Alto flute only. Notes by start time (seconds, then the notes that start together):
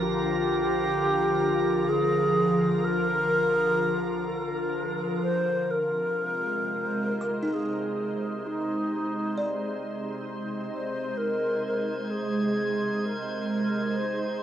0.02 G4
1.89 G#4
2.85 A#4
5.23 C5
5.71 A#4
7.54 G#4
8.47 D#4
10.74 C5
11.17 A#4
11.67 A#4
12.11 G#4
13.06 A#4
13.96 C5